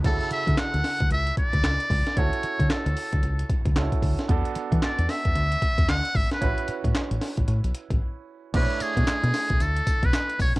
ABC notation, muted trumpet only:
X:1
M:4/4
L:1/16
Q:"Swing 16ths" 1/4=113
K:Dlyd
V:1 name="Muted trumpet"
A2 e2 f4 e2 d6 | c4 A6 z6 | z4 d2 e6 f2 e B- | B3 z12 z |
B2 G6 A3 B3 c2 |]